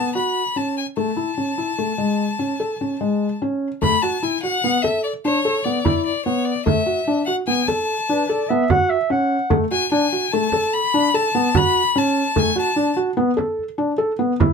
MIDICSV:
0, 0, Header, 1, 5, 480
1, 0, Start_track
1, 0, Key_signature, 3, "major"
1, 0, Tempo, 407056
1, 1146, Time_signature, 7, 2, 24, 8
1, 17136, End_track
2, 0, Start_track
2, 0, Title_t, "Violin"
2, 0, Program_c, 0, 40
2, 0, Note_on_c, 0, 81, 81
2, 155, Note_off_c, 0, 81, 0
2, 179, Note_on_c, 0, 83, 77
2, 668, Note_on_c, 0, 81, 73
2, 686, Note_off_c, 0, 83, 0
2, 907, Note_off_c, 0, 81, 0
2, 916, Note_on_c, 0, 80, 65
2, 1022, Note_off_c, 0, 80, 0
2, 1143, Note_on_c, 0, 81, 72
2, 3976, Note_off_c, 0, 81, 0
2, 4510, Note_on_c, 0, 83, 85
2, 4745, Note_on_c, 0, 81, 73
2, 4763, Note_off_c, 0, 83, 0
2, 4995, Note_on_c, 0, 80, 73
2, 5012, Note_off_c, 0, 81, 0
2, 5210, Note_off_c, 0, 80, 0
2, 5217, Note_on_c, 0, 78, 91
2, 5689, Note_on_c, 0, 76, 78
2, 5707, Note_off_c, 0, 78, 0
2, 5932, Note_off_c, 0, 76, 0
2, 5939, Note_on_c, 0, 74, 64
2, 6047, Note_off_c, 0, 74, 0
2, 6181, Note_on_c, 0, 73, 86
2, 6648, Note_on_c, 0, 74, 72
2, 6666, Note_off_c, 0, 73, 0
2, 7129, Note_off_c, 0, 74, 0
2, 7136, Note_on_c, 0, 74, 71
2, 7360, Note_off_c, 0, 74, 0
2, 7371, Note_on_c, 0, 73, 66
2, 7602, Note_on_c, 0, 74, 71
2, 7620, Note_off_c, 0, 73, 0
2, 7837, Note_off_c, 0, 74, 0
2, 7845, Note_on_c, 0, 76, 75
2, 8523, Note_off_c, 0, 76, 0
2, 8560, Note_on_c, 0, 78, 81
2, 8672, Note_off_c, 0, 78, 0
2, 8813, Note_on_c, 0, 80, 78
2, 9049, Note_on_c, 0, 81, 73
2, 9067, Note_off_c, 0, 80, 0
2, 10012, Note_off_c, 0, 81, 0
2, 11457, Note_on_c, 0, 80, 80
2, 11680, Note_off_c, 0, 80, 0
2, 11693, Note_on_c, 0, 80, 81
2, 12171, Note_on_c, 0, 81, 89
2, 12189, Note_off_c, 0, 80, 0
2, 12658, Note_on_c, 0, 83, 92
2, 12675, Note_off_c, 0, 81, 0
2, 13147, Note_on_c, 0, 81, 93
2, 13165, Note_off_c, 0, 83, 0
2, 13640, Note_on_c, 0, 83, 97
2, 13658, Note_off_c, 0, 81, 0
2, 14122, Note_on_c, 0, 81, 83
2, 14140, Note_off_c, 0, 83, 0
2, 14603, Note_on_c, 0, 80, 85
2, 14621, Note_off_c, 0, 81, 0
2, 14831, Note_off_c, 0, 80, 0
2, 14843, Note_on_c, 0, 81, 79
2, 15278, Note_off_c, 0, 81, 0
2, 17136, End_track
3, 0, Start_track
3, 0, Title_t, "Clarinet"
3, 0, Program_c, 1, 71
3, 9533, Note_on_c, 1, 71, 59
3, 9758, Note_off_c, 1, 71, 0
3, 9768, Note_on_c, 1, 74, 74
3, 10010, Note_on_c, 1, 76, 86
3, 10028, Note_off_c, 1, 74, 0
3, 10265, Note_on_c, 1, 78, 88
3, 10283, Note_off_c, 1, 76, 0
3, 10491, Note_on_c, 1, 76, 80
3, 10509, Note_off_c, 1, 78, 0
3, 10733, Note_off_c, 1, 76, 0
3, 10741, Note_on_c, 1, 78, 80
3, 11296, Note_off_c, 1, 78, 0
3, 17136, End_track
4, 0, Start_track
4, 0, Title_t, "Felt piano"
4, 0, Program_c, 2, 0
4, 178, Note_on_c, 2, 66, 68
4, 480, Note_off_c, 2, 66, 0
4, 662, Note_on_c, 2, 61, 59
4, 962, Note_off_c, 2, 61, 0
4, 1143, Note_on_c, 2, 57, 74
4, 1294, Note_off_c, 2, 57, 0
4, 1376, Note_on_c, 2, 64, 58
4, 1529, Note_off_c, 2, 64, 0
4, 1622, Note_on_c, 2, 61, 55
4, 1773, Note_off_c, 2, 61, 0
4, 1862, Note_on_c, 2, 64, 54
4, 2013, Note_off_c, 2, 64, 0
4, 2104, Note_on_c, 2, 57, 59
4, 2254, Note_off_c, 2, 57, 0
4, 2336, Note_on_c, 2, 56, 59
4, 2638, Note_off_c, 2, 56, 0
4, 2820, Note_on_c, 2, 61, 55
4, 2971, Note_off_c, 2, 61, 0
4, 3063, Note_on_c, 2, 69, 65
4, 3213, Note_off_c, 2, 69, 0
4, 3313, Note_on_c, 2, 61, 55
4, 3460, Note_off_c, 2, 61, 0
4, 3546, Note_on_c, 2, 56, 64
4, 3844, Note_off_c, 2, 56, 0
4, 4031, Note_on_c, 2, 61, 64
4, 4327, Note_off_c, 2, 61, 0
4, 4501, Note_on_c, 2, 57, 74
4, 4651, Note_off_c, 2, 57, 0
4, 4750, Note_on_c, 2, 66, 62
4, 4897, Note_off_c, 2, 66, 0
4, 4985, Note_on_c, 2, 64, 63
4, 5134, Note_off_c, 2, 64, 0
4, 5227, Note_on_c, 2, 66, 57
4, 5375, Note_off_c, 2, 66, 0
4, 5472, Note_on_c, 2, 59, 62
4, 5618, Note_off_c, 2, 59, 0
4, 5707, Note_on_c, 2, 69, 67
4, 6004, Note_off_c, 2, 69, 0
4, 6189, Note_on_c, 2, 62, 60
4, 6335, Note_off_c, 2, 62, 0
4, 6427, Note_on_c, 2, 69, 68
4, 6574, Note_off_c, 2, 69, 0
4, 6667, Note_on_c, 2, 59, 60
4, 6814, Note_off_c, 2, 59, 0
4, 6897, Note_on_c, 2, 64, 76
4, 7196, Note_off_c, 2, 64, 0
4, 7381, Note_on_c, 2, 59, 60
4, 7678, Note_off_c, 2, 59, 0
4, 7853, Note_on_c, 2, 57, 75
4, 8004, Note_off_c, 2, 57, 0
4, 8093, Note_on_c, 2, 66, 61
4, 8244, Note_off_c, 2, 66, 0
4, 8343, Note_on_c, 2, 62, 60
4, 8490, Note_off_c, 2, 62, 0
4, 8578, Note_on_c, 2, 66, 62
4, 8727, Note_off_c, 2, 66, 0
4, 8814, Note_on_c, 2, 59, 66
4, 8964, Note_off_c, 2, 59, 0
4, 9060, Note_on_c, 2, 69, 65
4, 9358, Note_off_c, 2, 69, 0
4, 9544, Note_on_c, 2, 62, 70
4, 9691, Note_off_c, 2, 62, 0
4, 9780, Note_on_c, 2, 69, 64
4, 9928, Note_off_c, 2, 69, 0
4, 10026, Note_on_c, 2, 59, 75
4, 10172, Note_off_c, 2, 59, 0
4, 10260, Note_on_c, 2, 66, 76
4, 10557, Note_off_c, 2, 66, 0
4, 10731, Note_on_c, 2, 61, 65
4, 11031, Note_off_c, 2, 61, 0
4, 11204, Note_on_c, 2, 57, 88
4, 11357, Note_off_c, 2, 57, 0
4, 11453, Note_on_c, 2, 66, 66
4, 11603, Note_off_c, 2, 66, 0
4, 11694, Note_on_c, 2, 62, 73
4, 11844, Note_off_c, 2, 62, 0
4, 11939, Note_on_c, 2, 66, 58
4, 12087, Note_off_c, 2, 66, 0
4, 12185, Note_on_c, 2, 57, 75
4, 12331, Note_off_c, 2, 57, 0
4, 12420, Note_on_c, 2, 69, 68
4, 12717, Note_off_c, 2, 69, 0
4, 12900, Note_on_c, 2, 62, 70
4, 13048, Note_off_c, 2, 62, 0
4, 13139, Note_on_c, 2, 69, 68
4, 13288, Note_off_c, 2, 69, 0
4, 13381, Note_on_c, 2, 59, 70
4, 13529, Note_off_c, 2, 59, 0
4, 13616, Note_on_c, 2, 66, 80
4, 13915, Note_off_c, 2, 66, 0
4, 14099, Note_on_c, 2, 61, 75
4, 14397, Note_off_c, 2, 61, 0
4, 14574, Note_on_c, 2, 57, 82
4, 14725, Note_off_c, 2, 57, 0
4, 14807, Note_on_c, 2, 66, 62
4, 14960, Note_off_c, 2, 66, 0
4, 15049, Note_on_c, 2, 62, 66
4, 15202, Note_off_c, 2, 62, 0
4, 15289, Note_on_c, 2, 66, 69
4, 15441, Note_off_c, 2, 66, 0
4, 15529, Note_on_c, 2, 59, 76
4, 15682, Note_off_c, 2, 59, 0
4, 15764, Note_on_c, 2, 69, 66
4, 16068, Note_off_c, 2, 69, 0
4, 16250, Note_on_c, 2, 62, 68
4, 16403, Note_off_c, 2, 62, 0
4, 16486, Note_on_c, 2, 69, 72
4, 16640, Note_off_c, 2, 69, 0
4, 16732, Note_on_c, 2, 59, 69
4, 16884, Note_off_c, 2, 59, 0
4, 16980, Note_on_c, 2, 64, 76
4, 17136, Note_off_c, 2, 64, 0
4, 17136, End_track
5, 0, Start_track
5, 0, Title_t, "Frame drum"
5, 4513, Note_on_c, 9, 64, 54
5, 4631, Note_off_c, 9, 64, 0
5, 5714, Note_on_c, 9, 64, 38
5, 5832, Note_off_c, 9, 64, 0
5, 6905, Note_on_c, 9, 64, 59
5, 7023, Note_off_c, 9, 64, 0
5, 7148, Note_on_c, 9, 64, 16
5, 7266, Note_off_c, 9, 64, 0
5, 7384, Note_on_c, 9, 64, 15
5, 7502, Note_off_c, 9, 64, 0
5, 7864, Note_on_c, 9, 64, 56
5, 7982, Note_off_c, 9, 64, 0
5, 9058, Note_on_c, 9, 64, 45
5, 9176, Note_off_c, 9, 64, 0
5, 10258, Note_on_c, 9, 64, 65
5, 10376, Note_off_c, 9, 64, 0
5, 10495, Note_on_c, 9, 64, 20
5, 10613, Note_off_c, 9, 64, 0
5, 10730, Note_on_c, 9, 64, 18
5, 10848, Note_off_c, 9, 64, 0
5, 11209, Note_on_c, 9, 64, 59
5, 11327, Note_off_c, 9, 64, 0
5, 12407, Note_on_c, 9, 64, 43
5, 12525, Note_off_c, 9, 64, 0
5, 13617, Note_on_c, 9, 64, 64
5, 13734, Note_off_c, 9, 64, 0
5, 13859, Note_on_c, 9, 64, 17
5, 13977, Note_off_c, 9, 64, 0
5, 14100, Note_on_c, 9, 64, 16
5, 14218, Note_off_c, 9, 64, 0
5, 14580, Note_on_c, 9, 64, 51
5, 14698, Note_off_c, 9, 64, 0
5, 14823, Note_on_c, 9, 64, 19
5, 14941, Note_off_c, 9, 64, 0
5, 15545, Note_on_c, 9, 64, 18
5, 15663, Note_off_c, 9, 64, 0
5, 15782, Note_on_c, 9, 64, 43
5, 15900, Note_off_c, 9, 64, 0
5, 16024, Note_on_c, 9, 64, 17
5, 16142, Note_off_c, 9, 64, 0
5, 16986, Note_on_c, 9, 64, 63
5, 17104, Note_off_c, 9, 64, 0
5, 17136, End_track
0, 0, End_of_file